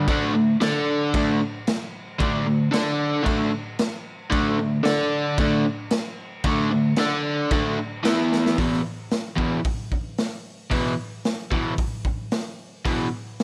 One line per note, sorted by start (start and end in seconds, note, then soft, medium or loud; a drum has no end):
0.08 0.33 D3 medium
0.08 0.34 A3 medium
0.08 0.34 D4 loud
0.08 kick loud
0.08 crash medium
0.34 0.55 D3 medium
0.34 0.55 A3 medium
0.61 1.13 D4 medium
0.61 1.13 A4 medium
0.61 1.14 D5 loud
0.61 snare loud
0.61 crash medium
1.14 1.39 D3 medium
1.14 1.40 A3 loud
1.14 1.40 D4 loud
1.14 kick loud
1.14 crash medium
1.67 snare loud
1.67 crash medium
2.19 2.45 D3 loud
2.19 2.45 A3 loud
2.19 2.46 D4 loud
2.19 kick loud
2.19 crash medium
2.46 2.67 D3 medium
2.46 2.67 A3 medium
2.71 3.24 D4 loud
2.71 3.25 A4 loud
2.71 3.25 D5 medium
2.71 snare loud
2.71 crash medium
3.23 3.50 D3 medium
3.23 3.51 A3 loud
3.23 3.51 D4 loud
3.23 kick loud
3.23 crash medium
3.79 snare loud
3.79 crash medium
4.30 4.57 D3 loud
4.30 4.57 A3 loud
4.30 4.57 D4 loud
4.30 kick loud
4.30 crash medium
4.59 4.80 D3 medium
4.59 4.80 A3 medium
4.83 5.37 D4 medium
4.83 5.37 A4 loud
4.83 5.38 D5 loud
4.83 snare loud
4.83 crash medium
5.38 5.64 D3 loud
5.38 5.65 A3 loud
5.38 5.65 D4 loud
5.38 kick loud
5.38 crash medium
5.91 snare loud
5.91 crash medium
6.44 6.70 D3 medium
6.44 6.70 A3 loud
6.44 6.71 D4 loud
6.44 kick loud
6.44 crash medium
6.71 6.93 D3 medium
6.71 6.93 A3 medium
6.96 7.51 D4 medium
6.96 7.51 A4 loud
6.96 7.51 D5 loud
6.96 snare loud
6.96 crash medium
7.51 7.77 D3 medium
7.51 7.77 A3 medium
7.51 7.78 D4 loud
7.51 kick loud
7.51 crash medium
8.03 8.57 E3 medium
8.03 8.57 B3 medium
8.03 8.57 E4 medium
8.03 snare loud
8.03 crash medium
8.32 snare medium
8.46 snare medium
8.57 8.79 E2 medium
8.57 8.79 B2 medium
8.57 8.80 E3 medium
8.57 kick loud
8.57 open hi-hat medium
8.72 snare soft
9.11 snare loud
9.11 open hi-hat soft
9.36 9.59 E2 loud
9.36 9.59 B2 loud
9.36 9.60 E3 loud
9.36 kick medium
9.64 kick loud
9.64 open hi-hat medium
9.92 kick medium
10.18 snare loud
10.18 open hi-hat medium
10.71 10.93 E2 medium
10.71 10.93 B2 medium
10.71 10.93 E3 medium
10.71 kick loud
10.71 open hi-hat medium
11.25 snare loud
11.25 open hi-hat medium
11.51 11.73 E2 loud
11.51 11.73 B2 medium
11.51 11.74 E3 loud
11.51 kick medium
11.78 kick loud
11.78 open hi-hat medium
12.05 kick medium
12.31 snare loud
12.31 open hi-hat medium
12.85 13.07 E2 medium
12.85 13.07 B2 loud
12.85 13.07 E3 medium
12.85 kick loud
12.85 open hi-hat medium
13.39 snare loud
13.39 open hi-hat medium